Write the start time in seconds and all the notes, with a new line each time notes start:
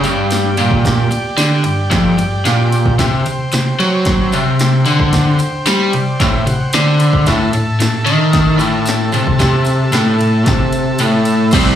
Already playing: G4 D5 G5
0.04 G2, ride, tambourine
0.31 snare, ride, tambourine
0.57 A#2, ride, tambourine
0.71 kick
0.85 kick, snare, ride, tambourine
1.11 muted overdriven electric guitar stroke, ride, tambourine
1.38 D3, snare, ride, tambourine
1.64 G2, ride, tambourine
1.90 F2, kick, snare, ride
2.18 G2, ride, tambourine
2.45 A#2, snare, ride, tambourine
2.72 ride, tambourine
2.86 kick
2.98 C3 C5 G5, kick, snare, ride, tambourine
3.26 C3, ride, tambourine
3.52 C3, snare, ride, tambourine
3.79 F#3, ride, tambourine
4.05 kick, snare, ride
4.32 C3, ride, tambourine
4.59 snare, ride, tambourine
4.86 D3, ride, tambourine
5.00 kick
5.13 kick, snare, ride, tambourine
5.39 muted overdriven electric guitar stroke, ride, tambourine
5.66 G3, snare, ride, tambourine
5.93 C3 D5, ride, tambourine
6.20 A2 E5, kick, snare, ride
6.47 C3 F#5, ride, tambourine
6.70 G5, snare, ride, tambourine
6.74 D3
6.99 B5, ride, tambourine
7.13 kick
7.25 A2 A4 E5, kick, snare, ride, tambourine
7.30 A5
7.53 A2, ride, tambourine
7.79 A2, snare, ride, tambourine
8.06 D#3, ride, tambourine
8.33 kick, snare, ride
8.59 A2, ride, tambourine
8.85 snare, ride, tambourine
9.12 C3, ride, tambourine
9.27 kick
9.39 C3, kick, snare, ride, tambourine
9.65 ride, tambourine
9.92 A2, snare, ride, tambourine
10.19 ride, tambourine
10.46 C3, kick, snare, ride
10.72 ride, tambourine
10.98 A2, ride, tambourine
11.25 ride, tambourine
11.51 C3 G3 C4 C5 E5 G5, kick, open hi-hat, crash, tambourine